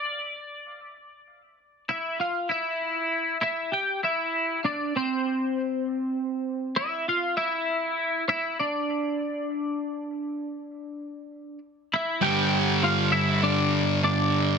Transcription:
<<
  \new Staff \with { instrumentName = "Clean electric guitar" } { \time 4/4 \key d \minor \tempo 4 = 99 d''2. <e' e''>8 <f' f''>8 | <e' e''>4. <e' e''>8 <g' g''>8 <e' e''>4 <d' d''>8 | <c' c''>2. <e' e''>8 <f' f''>8 | <e' e''>4. <e' e''>8 <d' d''>2~ |
<d' d''>2. r8 <e' e''>8 | \key g \dorian <g' g''>4 <f' f''>8 <e' e''>8 <d' d''>4 <d' d''>4 | }
  \new Staff \with { instrumentName = "Distorted electric guitar" } { \clef bass \time 4/4 \key d \minor r1 | r1 | r1 | r1 |
r1 | \key g \dorian <g, d g>1 | }
>>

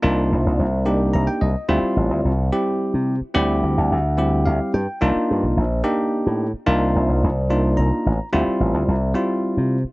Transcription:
<<
  \new Staff \with { instrumentName = "Tine electric piano" } { \time 6/8 \key c \dorian \tempo 4. = 72 << { r2 bes''16 g''16 ees''8 | r2. | r2 f''8 g''8 | r2. |
r2 bes''4 | r2. | } \\ { <bes d' ees' f'>4 r8 <bes d' ees' g'>4 r8 | <g c' e' f'>4 r8 <g c' e' g'>4 r8 | <g c' e' g'>4 r8 <g c' e' g'>4 r8 | <bes d' ees' f'>4 r8 <bes d' ees' g'>4 r8 |
<bes d' ees' f'>4 r8 <bes d' ees' f'>4 r8 | <g c' e' f'>4 r8 <g c' e' f'>4 r8 | } >> }
  \new Staff \with { instrumentName = "Slap bass" } { \clef bass \time 6/8 \key c \dorian c,8 c,16 c,16 c,4 c,16 r16 c,16 r16 | d,16 r16 a,,16 d,16 c,8 r8. c8 r16 | d,8 d,16 d,16 d,4 d,16 r16 g,16 r16 | c,16 r16 g,16 c,16 bes,,8 r8. a,8 r16 |
c,8 c,16 c,16 c,4 c,16 r16 a,,16 r16 | d,16 r16 a,,16 d,16 c,8 r8. c8 r16 | }
>>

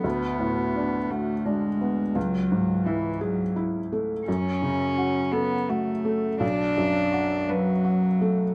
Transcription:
<<
  \new Staff \with { instrumentName = "Felt piano" } { \time 6/8 \key fis \minor \tempo 4. = 57 d,8 a,8 d'8 fis'8 d'8 b8 | cis,8 gis,8 e'8 gis'8 e'8 a8 | fis,8 cis8 fis'8 a'8 fis'8 a8 | b,,8 fis,8 fis'8 b'8 fis'8 a8 | }
  \new Staff \with { instrumentName = "Cello" } { \time 6/8 \key fis \minor b4. a8 gis4 | fis4 e8 fis8 r4 | cis'4. b8 a4 | d'4. fis4. | }
>>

